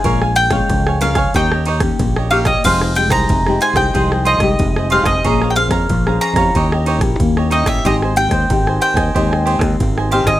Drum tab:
CC |----------------|x---------------|----------------|----------------|
RD |x-xxx-xxx-xxx-xx|x-xxx-xxx-xxx-xx|x-xxx-xxx-xxx-xx|x-xxx-xxx-xxx-xx|
SD |-r-r-r-r-r-r-r-r|-r-r-r-r-r-r-r-r|-r-r-r-r-r-r-r-r|-r-r-r-r-r-r-r-r|
BD |o--oo--oo--oo--o|o--oo--oo--oo--o|o--oo--oo--oo--o|o--oo--oo--oo--o|